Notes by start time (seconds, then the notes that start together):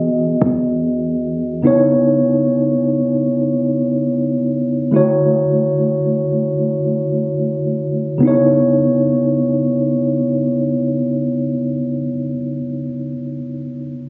Already playing: E1 E3 B3 F#4 G#4 D#5
0.42 E2
1.62 C#3 B3 D#4 E4
1.67 C#5
4.91 D3 A3 E4 F#4
4.96 C#5
8.18 C#3 B3
8.23 D#4 E4
8.27 C#5